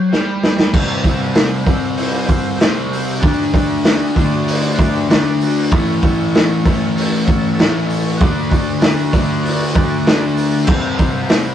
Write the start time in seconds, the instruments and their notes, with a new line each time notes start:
Already playing: distorted electric guitar F#3
0.08 distorted electric guitar G3, transistor combo organ G4 C5 G5
0.12 snare
0.40 transistor combo organ G4 C5 G5, snare
0.59 snare
0.72 distorted electric guitar C3 G3 C4, transistor combo organ G4 C5 E5, kick, crash
1.01 transistor combo organ G4 C5 E5, kick, open hi-hat
1.32 transistor combo organ G4 C5 E5, snare, open hi-hat
1.64 distorted electric guitar C4, transistor combo organ G4 C5 E5, kick, open hi-hat
1.68 distorted electric guitar C3 G3
1.96 transistor combo organ G4 C5 E5, open hi-hat
2.24 transistor combo organ G4 C5 E5
2.29 kick, open hi-hat
2.57 transistor combo organ G4 C5 E5, open hi-hat
2.61 distorted electric guitar C3 G3 C4, snare
2.92 transistor combo organ G4 C5 E5, open hi-hat
3.20 distorted electric guitar D3, transistor combo organ F#4 A4 D5, kick
3.24 distorted electric guitar A3 D4, open hi-hat
3.54 transistor combo organ F#4 A4 D5, kick, open hi-hat
3.84 transistor combo organ F#4 A4 D5, snare, open hi-hat
4.14 distorted electric guitar D4, transistor combo organ F#4 A4 D5, kick, open hi-hat
4.18 distorted electric guitar D3 A3
4.43 transistor combo organ F#4 A4 D5
4.48 open hi-hat
4.73 transistor combo organ F#4 A4 D5
4.79 kick, open hi-hat
5.09 distorted electric guitar D3 A3 D4, transistor combo organ F#4 A4 D5, snare, open hi-hat
5.41 transistor combo organ F#4 A4, open hi-hat
5.46 transistor combo organ D5
5.71 distorted electric guitar A2 E3, transistor combo organ E4 A4 C#5, kick, open hi-hat
5.75 distorted electric guitar A3
6.02 transistor combo organ E4 A4 C#5, kick, open hi-hat
6.31 transistor combo organ E4 A4 C#5
6.35 snare, open hi-hat
6.64 distorted electric guitar E3 A3, transistor combo organ E4 A4 C#5, kick, open hi-hat
6.70 distorted electric guitar A2
6.95 transistor combo organ E4 A4 C#5, open hi-hat
7.25 transistor combo organ E4 A4 C#5, kick, open hi-hat
7.53 transistor combo organ E4 A4 C#5
7.59 distorted electric guitar A2 E3 A3, snare, open hi-hat
7.86 transistor combo organ E4 A4 C#5, open hi-hat
8.17 distorted electric guitar D3, transistor combo organ F#4 A4 D5, kick, open hi-hat
8.22 distorted electric guitar A3 D4
8.49 transistor combo organ F#4 A4 D5, kick, open hi-hat
8.79 transistor combo organ F#4 A4 D5, snare, open hi-hat
9.09 transistor combo organ F#4 A4 D5
9.13 distorted electric guitar D3 A3 D4, kick, open hi-hat
9.42 transistor combo organ F#4 A4 D5
9.46 open hi-hat
9.74 transistor combo organ F#4 A4 D5, kick, open hi-hat
9.99 transistor combo organ F#4 A4 D5
10.06 distorted electric guitar D3 A3 D4, snare, open hi-hat
10.34 transistor combo organ F#4 A4 D5, open hi-hat
10.63 transistor combo organ G4 C5 E5, crash
10.68 distorted electric guitar C3 G3, kick
10.72 distorted electric guitar C4
10.97 transistor combo organ G4 C5 E5, kick, open hi-hat
11.25 transistor combo organ G4 C5 E5
11.29 snare, open hi-hat